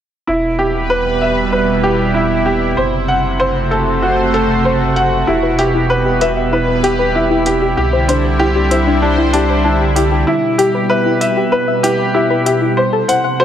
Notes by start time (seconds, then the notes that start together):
0.27 E1 B2 E4
0.51 B4
0.59 G4, closed hi-hat
0.68 G3
0.90 B4
1.21 E5
1.40 E4
1.52 B4
1.83 G4, closed hi-hat
2.14 E4
2.46 G4, closed hi-hat
2.77 F#1 C3 C5
3.08 F#5, closed hi-hat
3.40 A3 F#4 C5
3.71 A4, closed hi-hat
3.78 C5
4.02 F#4
4.34 A4, closed hi-hat
4.65 C5
4.96 F#5, closed hi-hat
5.27 E1 B2 E4 G4
5.43 B4
5.58 G4 E5, closed hi-hat
5.74 E4
5.90 G3 B4
6.06 G4
6.21 B4 E5, closed hi-hat
6.34 B4 E5
6.40 E4
6.52 E4 B4
6.83 G4, closed hi-hat
6.99 B4
7.15 E4 E5
7.31 E4
7.46 G4, closed hi-hat
7.62 G4
7.77 C2 D3 G4
7.93 C5
8.08 D4 C5, closed hi-hat
8.39 E4 G4
8.55 G4
8.71 E4 C5, closed hi-hat
8.77 C5
8.87 D4
9.02 D4
9.18 E4
9.33 D4 G4, closed hi-hat
9.50 C5
9.64 D4
9.96 E4 G4, closed hi-hat
10.12 G4
10.27 B2 E4
10.58 G4, closed hi-hat
10.75 B4
10.89 B4 E5
11.06 E4
11.13 B4
11.21 E5, closed hi-hat
11.37 G4
11.52 B4
11.68 E5
11.83 E4 G4, closed hi-hat
12.14 E4 G4
12.30 B4
12.46 G4 E5, closed hi-hat
12.62 E4
12.77 C3 C5
12.93 A4
13.08 C5 F#5, closed hi-hat
13.24 A3 F#5
13.40 F#4 C5